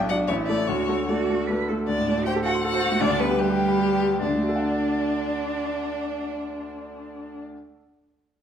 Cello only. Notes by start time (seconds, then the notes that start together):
Already playing: D4
0.28 E4
0.67 F#4
1.06 F#4
1.47 B4
1.68 A4
1.86 D4
2.25 G4
2.44 F#4
2.63 F#4
3.01 D4
3.21 B3
3.39 G3
4.23 D4